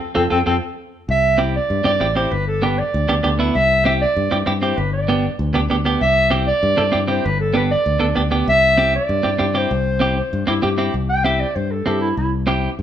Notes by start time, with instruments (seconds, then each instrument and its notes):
0.15 fingered electric bass F2, clean electric guitar C4 F4 A4, clarinet C4 A4
0.30 fingered electric bass F2, clean electric guitar C4 F4 A4, clarinet C4 A4
0.46 fingered electric bass F2, clean electric guitar C4 F4 A4, clarinet C4 A4
1.09 fingered electric bass C2, clarinet E5
1.38 clean electric guitar C4 E4 G4
1.56 clarinet D5
1.70 fingered electric bass G2
1.84 fingered electric bass G2, clean electric guitar C4 E4 G4, clarinet D5
2.00 fingered electric bass A1, clean electric guitar C4 E4 G4
2.16 clean electric guitar C4 E4 G4, clarinet C5
2.31 fingered electric bass G1, clarinet B4
2.48 clarinet A4
2.62 clean electric guitar B3 D4 G4, clarinet B4
2.79 clarinet D5
2.94 fingered electric bass D2
3.09 fingered electric bass D2, clean electric guitar B3 D4 G4
3.23 fingered electric bass D2, clean electric guitar B3 D4 G4
3.39 clean electric guitar B3 D4 E4
3.55 fingered electric bass C2, clarinet E5
3.85 clean electric guitar C4 E4 G4, clarinet E5
4.01 clarinet D5
4.16 fingered electric bass G2
4.31 fingered electric bass G2, clean electric guitar C4 E4 G4
4.46 fingered electric bass G2, clean electric guitar C4 E4 G4
4.61 clean electric guitar C4 E4 G4, clarinet C5
4.77 fingered electric bass G1, clarinet B4
4.93 clarinet D5
5.08 clean electric guitar B3 D4 G4
5.39 fingered electric bass D2
5.54 fingered electric bass D2, clean electric guitar B3 D4 G4
5.70 fingered electric bass D2, clean electric guitar B3 D4 G4
5.85 clean electric guitar B3 D4 G4
6.01 fingered electric bass C2, clarinet E5
6.30 clean electric guitar C4 E4 G4
6.47 clarinet D5
6.63 fingered electric bass G2
6.77 fingered electric bass G2, clean electric guitar C4 E4 A4
6.92 fingered electric bass G2, clean electric guitar C4 E4 G4
7.08 clean electric guitar C4 E4 G4, clarinet C5
7.25 fingered electric bass G1, clarinet B4
7.40 clarinet A4
7.54 clean electric guitar B3 D4 G4, clarinet B4
7.71 clarinet D5
7.86 fingered electric bass D2
8.00 fingered electric bass D2, clean electric guitar B3 D4 A4
8.15 fingered electric bass D2, clean electric guitar B3 D4 G4
8.31 clean electric guitar B3 D4 G4
8.48 fingered electric bass C2, clarinet E5
8.78 clean electric guitar C4 E4 G4
8.96 clarinet D5
9.09 fingered electric bass G2
9.23 fingered electric bass G2, clean electric guitar C4 E4 G4
9.38 fingered electric bass G2, clean electric guitar C4 E4 G4
9.54 clean electric guitar C4 E4 G4, clarinet C5
9.71 fingered electric bass C2
10.00 clean electric guitar C4 E4 G4
10.18 clarinet C5
10.33 fingered electric bass G2
10.47 fingered electric bass G2, clean electric guitar C4 E4 G4, clarinet E4
10.62 fingered electric bass G2, clean electric guitar C4 E4 G4, clarinet G4
10.78 clean electric guitar C4 E4 G4
10.94 fingered electric bass C2
11.09 clarinet G5
11.24 clean electric guitar C4 E4 G4, clarinet E5
11.40 clarinet D5
11.55 fingered electric bass G2, clarinet C5
11.71 clarinet A4
11.86 fingered electric bass G2, clean electric guitar C4 E4 A4, clarinet G4
12.01 clarinet E4
12.17 fingered electric bass C2, clarinet E4
12.47 clean electric guitar C4 E4 G4
12.79 fingered electric bass G2